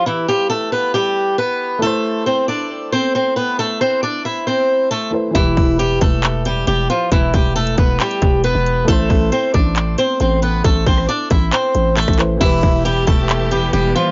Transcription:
<<
  \new Staff \with { instrumentName = "Grand piano" } { \time 4/4 \key e \minor \tempo 4 = 136 <e e' g' b'>1 | <a e' a' c''>1~ | <a e' a' c''>2.~ <a e' a' c''>8 <a e' b' c''>8 | <e e' g' b'>1~ |
<e e' g' b'>1 | <a e' a' c''>1~ | <a e' a' c''>2.~ <a e' a' c''>8 <a e' b' c''>8 | <e e' g' b'>1 | }
  \new Staff \with { instrumentName = "Steel-string acoustic guitar" } { \time 4/4 \key e \minor <e e'>8 <g g'>8 <a a'>8 <b b'>8 <g g'>4 <b b'>4 | <a a'>4 <c' c''>8 <d' d''>4 <c' c''>8 <c' c''>8 <b b'>8 | <a a'>8 <c' c''>8 <d' d''>8 <e' e''>8 <c' c''>4 <a a'>8 r8 | <e e'>4 <g g'>8 <a a'>4 <g g'>8 <g g'>8 <f f'>8 |
<e e'>8 <g g'>8 <a a'>8 <b b'>8 <g g'>4 <b b'>4 | <a a'>4 <c' c''>8 <d' d''>4 <c' c''>8 <c' c''>8 <b b'>8 | <a a'>8 <c' c''>8 <d' d''>8 <e' e''>8 <c' c''>4 <a a'>8 r8 | <e e'>4 <g g'>8 <a a'>4 <g g'>8 <g g'>8 <f f'>8 | }
  \new Staff \with { instrumentName = "String section" } { \time 4/4 \key e \minor r1 | r1 | r1 | r1 |
r1 | r1 | r1 | <e g b g'>1 | }
  \new Staff \with { instrumentName = "808-style bass" } { \clef bass \time 4/4 \key e \minor r1 | r1 | r1 | e,,8 e,,4 e,,4. e,,8 r8 |
e,,8 e,,4 e,,8 r8 e,,8. e,,8. | a,,8 a,,8 r8 a,,4 r8 a,,4 | a,,8 a,,8 r8 a,,8 r8 a,,8. a,,8. | e,,8 e,,4 e,,4. e,,8 r8 | }
  \new DrumStaff \with { instrumentName = "Drums" } \drummode { \time 4/4 r4 r4 r4 r4 | r4 r4 r4 r4 | r4 r4 r4 r4 | <hh bd>8 <hho bd>8 hh8 <hh bd>8 <hc hh>8 hh8 hh8 hh8 |
<hh bd>8 <hh bd>8 hh16 hh16 <hh bd>8 <hc hh>16 hh16 <hh bd>8 hh8 hh8 | <hh bd>8 <hho bd>8 hh8 <hh bd>8 <hc hh>8 hh8 hh8 hh8 | <hh bd>8 <hho bd>16 ss16 hh8 <hh bd>8 <hc hh>8 hh8 <hc hh>32 hh32 <hh bd ss>32 hh32 <hc hh>8 | <cymc hh bd>8 <hho bd>8 hh8 <hh bd>8 <hc hh>8 hh8 hh8 hh8 | }
>>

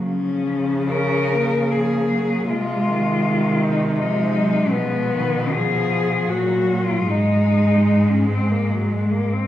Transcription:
<<
  \new Staff \with { instrumentName = "Cello" } { \time 3/4 \key des \major \tempo 4 = 76 des'4 bes'4 aes'4 | f'4. ees'8 ees'4 | ces'4 aes'4 \tuplet 3/2 { ges'4 f'8 } | ees'4~ ees'16 des'16 c'16 bes16 ges16 aes16 bes16 c'16 | }
  \new Staff \with { instrumentName = "Cello" } { \clef bass \time 3/4 \key des \major r4 des'8 bes4. | aes8 ees4. f8 ges8 | aes8 ees8 f4 ges4 | aes2~ aes8 r8 | }
  \new Staff \with { instrumentName = "Cello" } { \clef bass \time 3/4 \key des \major f2 f8 ges8 | aes2 aes4 | f4 f4 ges4 | aes2~ aes8. r16 | }
  \new Staff \with { instrumentName = "Cello" } { \clef bass \time 3/4 \key des \major des2. | c2. | ces2 bes,4 | aes,2~ aes,8. r16 | }
>>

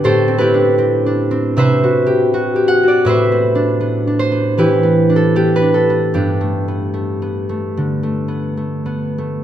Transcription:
<<
  \new Staff \with { instrumentName = "Harp" } { \time 4/4 \key a \dorian \tempo 4 = 77 << { <c'' d'' g''>8 b'4. e''4. fis''16 d''16 | e''4. c''8 b'8. a'16 g'16 b'16 a'8 | g'1 | } \\ { <g' a' b'>8 <e' g'>4. <b' c''>2 | <b' c''>2 <e' g'>2 | <b d'>1 | } >> }
  \new Staff \with { instrumentName = "Harp" } { \time 4/4 \key a \dorian \tuplet 3/2 { <a, b d'>8 c'8 d'8 c'8 d'8 c'8 c8 fis'8 g'8 fis'8 g'8 fis'8 } | \tuplet 3/2 { a,8 b8 d'8 b8 d'8 b8 e8 b8 d'8 b8 d'8 b8 } | \tuplet 3/2 { g,8 a8 b8 a8 b8 a8 d8 a8 b8 a8 b8 a8 } | }
>>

